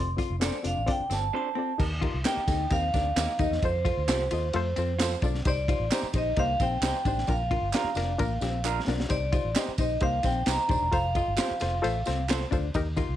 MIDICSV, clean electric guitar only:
0, 0, Header, 1, 2, 480
1, 0, Start_track
1, 0, Tempo, 456621
1, 1885, Time_signature, 4, 2, 24, 8
1, 13839, End_track
2, 0, Start_track
2, 0, Title_t, "Clean electric guitar"
2, 0, Program_c, 0, 27
2, 435, Note_on_c, 0, 62, 74
2, 444, Note_on_c, 0, 69, 77
2, 452, Note_on_c, 0, 72, 86
2, 589, Note_off_c, 0, 62, 0
2, 594, Note_off_c, 0, 69, 0
2, 598, Note_off_c, 0, 72, 0
2, 1402, Note_on_c, 0, 62, 86
2, 1407, Note_on_c, 0, 69, 89
2, 1412, Note_on_c, 0, 72, 102
2, 1554, Note_off_c, 0, 62, 0
2, 1557, Note_off_c, 0, 69, 0
2, 1559, Note_off_c, 0, 72, 0
2, 2371, Note_on_c, 0, 58, 79
2, 2376, Note_on_c, 0, 63, 84
2, 2383, Note_on_c, 0, 67, 89
2, 2520, Note_off_c, 0, 58, 0
2, 2523, Note_off_c, 0, 63, 0
2, 2527, Note_off_c, 0, 67, 0
2, 3323, Note_on_c, 0, 58, 96
2, 3329, Note_on_c, 0, 63, 105
2, 3334, Note_on_c, 0, 67, 98
2, 3478, Note_off_c, 0, 58, 0
2, 3481, Note_off_c, 0, 63, 0
2, 3483, Note_off_c, 0, 67, 0
2, 4287, Note_on_c, 0, 65, 78
2, 4294, Note_on_c, 0, 69, 80
2, 4302, Note_on_c, 0, 72, 81
2, 4441, Note_off_c, 0, 65, 0
2, 4445, Note_off_c, 0, 69, 0
2, 4449, Note_off_c, 0, 72, 0
2, 5241, Note_on_c, 0, 65, 95
2, 5250, Note_on_c, 0, 69, 92
2, 5256, Note_on_c, 0, 72, 92
2, 5399, Note_off_c, 0, 65, 0
2, 5404, Note_off_c, 0, 69, 0
2, 5407, Note_off_c, 0, 72, 0
2, 6216, Note_on_c, 0, 63, 76
2, 6223, Note_on_c, 0, 67, 81
2, 6230, Note_on_c, 0, 72, 86
2, 6367, Note_off_c, 0, 63, 0
2, 6371, Note_off_c, 0, 67, 0
2, 6374, Note_off_c, 0, 72, 0
2, 7176, Note_on_c, 0, 63, 89
2, 7183, Note_on_c, 0, 67, 96
2, 7186, Note_on_c, 0, 72, 104
2, 7327, Note_off_c, 0, 63, 0
2, 7331, Note_off_c, 0, 67, 0
2, 7332, Note_off_c, 0, 72, 0
2, 8135, Note_on_c, 0, 62, 68
2, 8144, Note_on_c, 0, 65, 85
2, 8148, Note_on_c, 0, 70, 82
2, 8286, Note_off_c, 0, 62, 0
2, 8291, Note_off_c, 0, 65, 0
2, 8293, Note_off_c, 0, 70, 0
2, 9089, Note_on_c, 0, 62, 97
2, 9098, Note_on_c, 0, 65, 94
2, 9101, Note_on_c, 0, 70, 98
2, 9242, Note_off_c, 0, 62, 0
2, 9247, Note_off_c, 0, 65, 0
2, 9249, Note_off_c, 0, 70, 0
2, 10051, Note_on_c, 0, 63, 72
2, 10055, Note_on_c, 0, 67, 73
2, 10062, Note_on_c, 0, 72, 83
2, 10202, Note_off_c, 0, 63, 0
2, 10204, Note_off_c, 0, 67, 0
2, 10208, Note_off_c, 0, 72, 0
2, 11001, Note_on_c, 0, 63, 102
2, 11011, Note_on_c, 0, 67, 101
2, 11018, Note_on_c, 0, 72, 107
2, 11155, Note_off_c, 0, 63, 0
2, 11160, Note_off_c, 0, 67, 0
2, 11164, Note_off_c, 0, 72, 0
2, 11962, Note_on_c, 0, 65, 81
2, 11971, Note_on_c, 0, 69, 87
2, 11974, Note_on_c, 0, 72, 98
2, 12114, Note_off_c, 0, 65, 0
2, 12118, Note_off_c, 0, 69, 0
2, 12120, Note_off_c, 0, 72, 0
2, 12916, Note_on_c, 0, 65, 90
2, 12926, Note_on_c, 0, 69, 101
2, 12932, Note_on_c, 0, 72, 104
2, 13069, Note_off_c, 0, 65, 0
2, 13073, Note_off_c, 0, 69, 0
2, 13077, Note_off_c, 0, 72, 0
2, 13839, End_track
0, 0, End_of_file